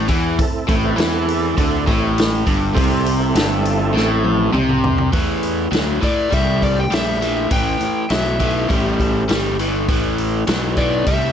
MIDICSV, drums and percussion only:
0, 0, Header, 1, 2, 480
1, 0, Start_track
1, 0, Key_signature, 0, "minor"
1, 0, Tempo, 592885
1, 318, Time_signature, 4, 2, 24, 8
1, 9165, End_track
2, 0, Start_track
2, 0, Title_t, "Drums"
2, 67, Note_on_c, 9, 46, 61
2, 73, Note_on_c, 9, 36, 98
2, 148, Note_off_c, 9, 46, 0
2, 154, Note_off_c, 9, 36, 0
2, 314, Note_on_c, 9, 46, 84
2, 315, Note_on_c, 9, 36, 106
2, 395, Note_off_c, 9, 46, 0
2, 396, Note_off_c, 9, 36, 0
2, 556, Note_on_c, 9, 36, 110
2, 558, Note_on_c, 9, 46, 55
2, 637, Note_off_c, 9, 36, 0
2, 639, Note_off_c, 9, 46, 0
2, 795, Note_on_c, 9, 46, 76
2, 809, Note_on_c, 9, 38, 115
2, 876, Note_off_c, 9, 46, 0
2, 890, Note_off_c, 9, 38, 0
2, 1040, Note_on_c, 9, 46, 55
2, 1121, Note_off_c, 9, 46, 0
2, 1277, Note_on_c, 9, 36, 99
2, 1277, Note_on_c, 9, 46, 68
2, 1358, Note_off_c, 9, 36, 0
2, 1358, Note_off_c, 9, 46, 0
2, 1518, Note_on_c, 9, 36, 101
2, 1525, Note_on_c, 9, 46, 50
2, 1599, Note_off_c, 9, 36, 0
2, 1606, Note_off_c, 9, 46, 0
2, 1764, Note_on_c, 9, 46, 83
2, 1779, Note_on_c, 9, 38, 112
2, 1845, Note_off_c, 9, 46, 0
2, 1860, Note_off_c, 9, 38, 0
2, 1999, Note_on_c, 9, 36, 102
2, 2000, Note_on_c, 9, 46, 62
2, 2080, Note_off_c, 9, 36, 0
2, 2081, Note_off_c, 9, 46, 0
2, 2239, Note_on_c, 9, 36, 110
2, 2246, Note_on_c, 9, 46, 73
2, 2320, Note_off_c, 9, 36, 0
2, 2327, Note_off_c, 9, 46, 0
2, 2479, Note_on_c, 9, 46, 62
2, 2560, Note_off_c, 9, 46, 0
2, 2716, Note_on_c, 9, 46, 88
2, 2730, Note_on_c, 9, 38, 101
2, 2797, Note_off_c, 9, 46, 0
2, 2811, Note_off_c, 9, 38, 0
2, 2958, Note_on_c, 9, 46, 61
2, 3039, Note_off_c, 9, 46, 0
2, 3210, Note_on_c, 9, 38, 58
2, 3291, Note_off_c, 9, 38, 0
2, 3437, Note_on_c, 9, 48, 65
2, 3518, Note_off_c, 9, 48, 0
2, 3678, Note_on_c, 9, 47, 89
2, 3759, Note_off_c, 9, 47, 0
2, 3797, Note_on_c, 9, 45, 77
2, 3878, Note_off_c, 9, 45, 0
2, 3917, Note_on_c, 9, 43, 104
2, 3998, Note_off_c, 9, 43, 0
2, 4033, Note_on_c, 9, 43, 87
2, 4114, Note_off_c, 9, 43, 0
2, 4154, Note_on_c, 9, 46, 73
2, 4156, Note_on_c, 9, 36, 106
2, 4235, Note_off_c, 9, 46, 0
2, 4237, Note_off_c, 9, 36, 0
2, 4395, Note_on_c, 9, 46, 57
2, 4476, Note_off_c, 9, 46, 0
2, 4638, Note_on_c, 9, 46, 72
2, 4652, Note_on_c, 9, 38, 108
2, 4719, Note_off_c, 9, 46, 0
2, 4733, Note_off_c, 9, 38, 0
2, 4879, Note_on_c, 9, 36, 90
2, 4880, Note_on_c, 9, 46, 56
2, 4960, Note_off_c, 9, 36, 0
2, 4961, Note_off_c, 9, 46, 0
2, 5120, Note_on_c, 9, 36, 97
2, 5123, Note_on_c, 9, 46, 67
2, 5201, Note_off_c, 9, 36, 0
2, 5203, Note_off_c, 9, 46, 0
2, 5362, Note_on_c, 9, 36, 77
2, 5365, Note_on_c, 9, 46, 49
2, 5443, Note_off_c, 9, 36, 0
2, 5446, Note_off_c, 9, 46, 0
2, 5601, Note_on_c, 9, 46, 77
2, 5616, Note_on_c, 9, 38, 116
2, 5682, Note_off_c, 9, 46, 0
2, 5697, Note_off_c, 9, 38, 0
2, 5846, Note_on_c, 9, 46, 58
2, 5927, Note_off_c, 9, 46, 0
2, 6078, Note_on_c, 9, 46, 81
2, 6081, Note_on_c, 9, 36, 119
2, 6159, Note_off_c, 9, 46, 0
2, 6162, Note_off_c, 9, 36, 0
2, 6319, Note_on_c, 9, 46, 55
2, 6400, Note_off_c, 9, 46, 0
2, 6556, Note_on_c, 9, 46, 70
2, 6571, Note_on_c, 9, 38, 100
2, 6637, Note_off_c, 9, 46, 0
2, 6652, Note_off_c, 9, 38, 0
2, 6799, Note_on_c, 9, 46, 64
2, 6803, Note_on_c, 9, 36, 83
2, 6880, Note_off_c, 9, 46, 0
2, 6884, Note_off_c, 9, 36, 0
2, 7044, Note_on_c, 9, 36, 102
2, 7045, Note_on_c, 9, 46, 67
2, 7125, Note_off_c, 9, 36, 0
2, 7126, Note_off_c, 9, 46, 0
2, 7284, Note_on_c, 9, 36, 81
2, 7288, Note_on_c, 9, 46, 51
2, 7365, Note_off_c, 9, 36, 0
2, 7369, Note_off_c, 9, 46, 0
2, 7521, Note_on_c, 9, 46, 77
2, 7535, Note_on_c, 9, 38, 112
2, 7602, Note_off_c, 9, 46, 0
2, 7616, Note_off_c, 9, 38, 0
2, 7765, Note_on_c, 9, 46, 57
2, 7846, Note_off_c, 9, 46, 0
2, 8003, Note_on_c, 9, 36, 120
2, 8003, Note_on_c, 9, 46, 81
2, 8084, Note_off_c, 9, 36, 0
2, 8084, Note_off_c, 9, 46, 0
2, 8242, Note_on_c, 9, 46, 51
2, 8323, Note_off_c, 9, 46, 0
2, 8478, Note_on_c, 9, 46, 74
2, 8493, Note_on_c, 9, 38, 111
2, 8559, Note_off_c, 9, 46, 0
2, 8574, Note_off_c, 9, 38, 0
2, 8716, Note_on_c, 9, 46, 54
2, 8720, Note_on_c, 9, 36, 92
2, 8797, Note_off_c, 9, 46, 0
2, 8801, Note_off_c, 9, 36, 0
2, 8957, Note_on_c, 9, 46, 68
2, 8960, Note_on_c, 9, 36, 94
2, 9038, Note_off_c, 9, 46, 0
2, 9041, Note_off_c, 9, 36, 0
2, 9165, End_track
0, 0, End_of_file